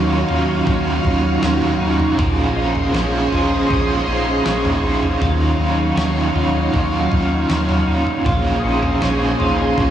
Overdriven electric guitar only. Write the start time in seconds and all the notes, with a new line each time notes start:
Already playing: D#3 F#3 C#4 D#4 F4
0.27 D#4 F4
0.33 C#4
0.65 F#3 C#4 D#4
0.71 F4
1.02 D#4 F4
1.08 C#4
1.41 D#3 F#3 C#4 D#4
1.45 F4
1.79 D#4 F4
1.84 C#4
2.17 A#2 G#3 C#4 D#4
2.21 F4
2.54 D#4 F4
2.60 C#4
2.92 A#2 G#3 C#4 D#4 F4
3.30 D#4 F4
3.35 C#4
3.69 G#3 C#4 D#4
3.74 F4
4.06 D#4 F4
4.11 C#4
4.44 A#2 G#3 C#4 D#4
4.48 F4
4.82 D#4 F4
4.88 C#4
5.20 D#3 F#3 C#4 D#4
5.24 F4
5.58 D#4 F4
5.63 C#4
5.96 D#3 F#3 C#4 D#4 F4
6.33 D#4 F4
6.39 C#4
6.72 F#3 C#4 D#4
6.77 F4
7.10 D#4 F4
7.16 C#4
7.49 D#3 F#3 C#4 D#4
7.53 F4
7.86 D#4 F4
7.91 C#4
8.25 A#2 G#3 C#4 D#4 F4
8.62 D#4 F4
8.68 C#4
9.00 A#2 G#3 C#4 D#4 F4
9.39 D#4 F4
9.44 C#4
9.76 G#3 C#4
9.81 D#4 F4